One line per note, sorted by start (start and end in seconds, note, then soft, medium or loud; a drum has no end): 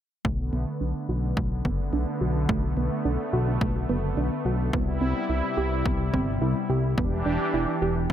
0.25 0.50 B1 medium
0.25 4.69 D3 medium
0.25 4.69 A3 medium
0.25 0.44 A3 loud
0.25 8.13 B3 medium
0.25 kick loud
0.53 0.66 B1 medium
0.53 0.72 B3 medium
0.81 0.94 B1 medium
0.81 1.07 D4 medium
1.09 1.34 B1 loud
1.09 1.20 F#4 medium
1.37 1.63 B1 medium
1.37 1.64 A3 medium
1.37 kick loud
1.65 1.91 F#1 medium
1.65 1.77 B3 loud
1.65 kick medium
1.93 2.06 B1 loud
1.93 2.12 D4 medium
2.21 2.47 B1 medium
2.21 2.33 F#4 medium
2.49 2.75 B1 medium
2.49 2.68 A3 loud
2.49 kick loud
2.77 2.90 B1 medium
2.77 2.96 B3 medium
3.05 3.18 B1 medium
3.05 3.32 D4 medium
3.33 3.59 B1 loud
3.33 3.45 F#4 medium
3.61 3.87 B1 medium
3.61 3.88 A3 medium
3.61 kick loud
3.89 4.15 F#1 medium
3.89 4.01 B3 loud
4.17 4.30 B1 loud
4.17 4.36 D4 medium
4.45 4.71 B1 medium
4.45 4.57 F#4 medium
4.73 4.99 C2 medium
4.73 6.96 C3 medium
4.73 6.95 G3 medium
4.73 4.93 B3 loud
4.73 6.96 E4 medium
4.73 kick loud
5.01 5.14 C2 medium
5.01 5.21 C4 medium
5.29 5.42 C2 medium
5.29 5.56 E4 medium
5.57 5.83 C2 medium
5.57 5.69 G4 medium
5.86 6.11 C2 medium
5.86 6.12 B3 medium
5.86 kick loud
6.13 6.39 G1 medium
6.13 6.25 C4 loud
6.13 kick medium
6.42 6.54 C2 loud
6.42 6.61 E4 medium
6.70 6.95 C2 medium
6.70 6.81 G4 medium
6.98 7.23 E1 loud
6.98 8.13 E3 medium
6.98 7.17 B3 loud
6.98 8.13 D4 medium
6.98 8.13 G4 medium
6.98 kick loud
7.26 7.39 E1 medium
7.26 7.45 D4 medium
7.54 7.67 E1 medium
7.54 7.80 E4 medium
7.82 8.07 E1 loud
7.82 7.93 G4 medium